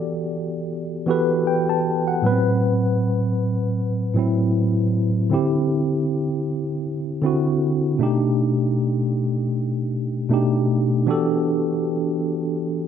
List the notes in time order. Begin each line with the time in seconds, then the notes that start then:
Already playing: E3 B3 F#4 G4 A4 D5
1.06 E3 B3 F#4 G4 A4
1.11 B4
1.47 G5
1.69 A5
2.08 F#5
2.22 A2 F#3 B3
2.26 B4
2.31 C4
4.14 A2 F#3 C4
4.19 E4
5.30 D3 C4 E4
5.34 G4
7.22 D3 C4 E4
7.26 F#4
7.99 B2 A3 D4 D#4
8.03 G4
10.29 B2 A3 D4 D#4
10.34 G4
11.06 E3 B3 D4 F#4 G4
11.11 A4